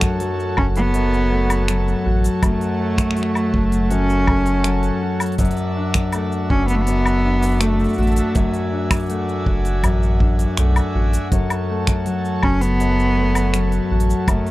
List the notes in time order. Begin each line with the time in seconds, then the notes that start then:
Already playing: F#2 A3 D4 E4 F#4 A4 C#5 A5
0.01 finger snap, kick, open hi-hat, cabasa
0.20 F#3, open hi-hat, cabasa
0.40 cabasa
0.57 F#1 C#4 F#4, kick, low woodblock
0.76 B3, open hi-hat, cabasa
0.94 F#2, open hi-hat, cabasa
1.14 cabasa
1.31 A3
1.50 open hi-hat, cabasa, low woodblock
1.68 F#3, finger snap, open hi-hat, cabasa
1.88 cabasa
2.06 A1 F#4
2.24 open hi-hat, cabasa
2.43 F#1 F#2 A3, kick, open hi-hat, cabasa, low woodblock
2.61 open hi-hat, cabasa
2.80 A3
2.98 finger snap, kick, open hi-hat, cabasa
3.11 finger snap
3.17 F#3, open hi-hat, cabasa
3.23 finger snap
3.35 cabasa, low woodblock
3.54 F#1 F#4, kick
3.72 open hi-hat, cabasa
3.91 F#2 C#4, open hi-hat, cabasa
4.10 cabasa
4.27 A3, kick, low woodblock
4.46 open hi-hat, cabasa
4.64 F#3, finger snap, open hi-hat, cabasa
4.83 open hi-hat, cabasa
5.02 F#4
5.20 open hi-hat, cabasa, low woodblock
5.26 open hi-hat
5.32 open hi-hat
5.38 F#1 F#2 F#4 D5 E5 A5, kick, open hi-hat, cabasa
5.45 open hi-hat
5.51 open hi-hat
5.57 open hi-hat, cabasa
5.77 D4
5.94 finger snap, kick, open hi-hat, cabasa
6.12 A3, open hi-hat, cabasa, low woodblock
6.32 cabasa
6.50 F#1 C#4 F#4, kick
6.68 B3, open hi-hat, cabasa
6.75 A3
6.82 B3
6.87 F#2, open hi-hat, cabasa
7.06 cabasa, low woodblock
7.25 D4
7.42 open hi-hat, cabasa
7.45 open hi-hat
7.47 open hi-hat
7.51 open hi-hat
7.54 open hi-hat
7.56 open hi-hat
7.58 A3, finger snap, open hi-hat
7.61 A3, open hi-hat, cabasa
7.80 open hi-hat, cabasa
7.84 open hi-hat, cabasa
7.89 open hi-hat, cabasa
7.93 open hi-hat, cabasa
7.97 A1 A3 F#4, open hi-hat
8.03 open hi-hat
8.07 open hi-hat
8.12 open hi-hat
8.16 open hi-hat, cabasa
8.35 F#1 F#2 G#5, kick, open hi-hat, cabasa
8.54 open hi-hat, cabasa
8.72 D4
8.91 finger snap, kick, open hi-hat, cabasa, low woodblock
8.94 open hi-hat
8.97 open hi-hat
9.03 open hi-hat
9.06 open hi-hat
9.10 A3, open hi-hat, cabasa
9.29 cabasa
9.46 F#1 F#4, kick
9.65 open hi-hat, cabasa
9.83 A1 F#2, kick, open hi-hat, cabasa, low woodblock
10.03 cabasa
10.20 D4, kick
10.39 open hi-hat, cabasa
10.57 B1 A3, finger snap, open hi-hat, cabasa
10.76 open hi-hat, cabasa, low woodblock
10.95 A1 F#4
11.13 open hi-hat, cabasa
11.32 F#1 F#2 A4 C#5 A5, kick, open hi-hat, cabasa
11.50 open hi-hat, cabasa, low woodblock
11.69 A3
11.87 finger snap, kick, open hi-hat, cabasa
12.06 F#3, open hi-hat, cabasa
12.25 cabasa
12.43 F#1 C#4 F#4, kick, low woodblock
12.61 B3, open hi-hat, cabasa
12.80 F#2, open hi-hat, cabasa
12.99 cabasa
13.17 A3
13.35 open hi-hat, cabasa, low woodblock
13.54 F#3, finger snap, open hi-hat, cabasa
13.72 open hi-hat, cabasa
13.91 A1 F#4
14.00 open hi-hat
14.10 cabasa
14.28 F#1 F#2 A3, kick, open hi-hat, cabasa, low woodblock
14.47 open hi-hat, cabasa